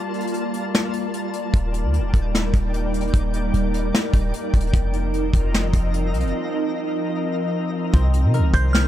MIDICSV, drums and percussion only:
0, 0, Header, 1, 2, 480
1, 0, Start_track
1, 0, Tempo, 400000
1, 1844, Time_signature, 4, 2, 24, 8
1, 10655, End_track
2, 0, Start_track
2, 0, Title_t, "Drums"
2, 164, Note_on_c, 9, 42, 46
2, 244, Note_off_c, 9, 42, 0
2, 244, Note_on_c, 9, 42, 62
2, 324, Note_off_c, 9, 42, 0
2, 324, Note_on_c, 9, 42, 72
2, 403, Note_off_c, 9, 42, 0
2, 403, Note_on_c, 9, 42, 72
2, 523, Note_off_c, 9, 42, 0
2, 644, Note_on_c, 9, 42, 77
2, 764, Note_off_c, 9, 42, 0
2, 894, Note_on_c, 9, 38, 114
2, 1014, Note_off_c, 9, 38, 0
2, 1120, Note_on_c, 9, 42, 78
2, 1240, Note_off_c, 9, 42, 0
2, 1364, Note_on_c, 9, 42, 85
2, 1484, Note_off_c, 9, 42, 0
2, 1601, Note_on_c, 9, 42, 70
2, 1721, Note_off_c, 9, 42, 0
2, 1843, Note_on_c, 9, 42, 78
2, 1845, Note_on_c, 9, 36, 115
2, 1963, Note_off_c, 9, 42, 0
2, 1965, Note_off_c, 9, 36, 0
2, 2082, Note_on_c, 9, 42, 72
2, 2202, Note_off_c, 9, 42, 0
2, 2324, Note_on_c, 9, 42, 73
2, 2444, Note_off_c, 9, 42, 0
2, 2565, Note_on_c, 9, 36, 93
2, 2565, Note_on_c, 9, 42, 80
2, 2685, Note_off_c, 9, 36, 0
2, 2685, Note_off_c, 9, 42, 0
2, 2816, Note_on_c, 9, 38, 111
2, 2936, Note_off_c, 9, 38, 0
2, 3041, Note_on_c, 9, 42, 75
2, 3044, Note_on_c, 9, 36, 93
2, 3161, Note_off_c, 9, 42, 0
2, 3164, Note_off_c, 9, 36, 0
2, 3285, Note_on_c, 9, 42, 82
2, 3405, Note_off_c, 9, 42, 0
2, 3525, Note_on_c, 9, 42, 69
2, 3606, Note_off_c, 9, 42, 0
2, 3606, Note_on_c, 9, 42, 57
2, 3685, Note_off_c, 9, 42, 0
2, 3685, Note_on_c, 9, 42, 45
2, 3765, Note_off_c, 9, 42, 0
2, 3765, Note_on_c, 9, 36, 116
2, 3765, Note_on_c, 9, 42, 80
2, 3885, Note_off_c, 9, 36, 0
2, 3885, Note_off_c, 9, 42, 0
2, 4002, Note_on_c, 9, 42, 73
2, 4122, Note_off_c, 9, 42, 0
2, 4244, Note_on_c, 9, 42, 74
2, 4364, Note_off_c, 9, 42, 0
2, 4485, Note_on_c, 9, 42, 78
2, 4605, Note_off_c, 9, 42, 0
2, 4734, Note_on_c, 9, 38, 113
2, 4854, Note_off_c, 9, 38, 0
2, 4959, Note_on_c, 9, 42, 77
2, 4962, Note_on_c, 9, 36, 93
2, 5079, Note_off_c, 9, 42, 0
2, 5082, Note_off_c, 9, 36, 0
2, 5203, Note_on_c, 9, 42, 84
2, 5323, Note_off_c, 9, 42, 0
2, 5443, Note_on_c, 9, 42, 69
2, 5444, Note_on_c, 9, 36, 99
2, 5523, Note_off_c, 9, 42, 0
2, 5523, Note_on_c, 9, 42, 56
2, 5564, Note_off_c, 9, 36, 0
2, 5603, Note_off_c, 9, 42, 0
2, 5603, Note_on_c, 9, 42, 43
2, 5682, Note_off_c, 9, 42, 0
2, 5682, Note_on_c, 9, 42, 82
2, 5683, Note_on_c, 9, 36, 120
2, 5802, Note_off_c, 9, 42, 0
2, 5803, Note_off_c, 9, 36, 0
2, 5920, Note_on_c, 9, 42, 69
2, 6040, Note_off_c, 9, 42, 0
2, 6163, Note_on_c, 9, 42, 73
2, 6283, Note_off_c, 9, 42, 0
2, 6402, Note_on_c, 9, 36, 90
2, 6403, Note_on_c, 9, 42, 78
2, 6522, Note_off_c, 9, 36, 0
2, 6523, Note_off_c, 9, 42, 0
2, 6652, Note_on_c, 9, 38, 114
2, 6772, Note_off_c, 9, 38, 0
2, 6880, Note_on_c, 9, 42, 78
2, 6882, Note_on_c, 9, 36, 95
2, 7000, Note_off_c, 9, 42, 0
2, 7002, Note_off_c, 9, 36, 0
2, 7124, Note_on_c, 9, 42, 82
2, 7244, Note_off_c, 9, 42, 0
2, 7364, Note_on_c, 9, 42, 70
2, 7444, Note_off_c, 9, 42, 0
2, 7444, Note_on_c, 9, 42, 53
2, 7524, Note_off_c, 9, 42, 0
2, 7524, Note_on_c, 9, 42, 41
2, 7644, Note_off_c, 9, 42, 0
2, 9522, Note_on_c, 9, 42, 81
2, 9524, Note_on_c, 9, 36, 126
2, 9642, Note_off_c, 9, 42, 0
2, 9644, Note_off_c, 9, 36, 0
2, 9761, Note_on_c, 9, 42, 76
2, 9881, Note_off_c, 9, 42, 0
2, 10003, Note_on_c, 9, 42, 78
2, 10123, Note_off_c, 9, 42, 0
2, 10243, Note_on_c, 9, 36, 91
2, 10244, Note_on_c, 9, 42, 77
2, 10363, Note_off_c, 9, 36, 0
2, 10364, Note_off_c, 9, 42, 0
2, 10494, Note_on_c, 9, 38, 119
2, 10614, Note_off_c, 9, 38, 0
2, 10655, End_track
0, 0, End_of_file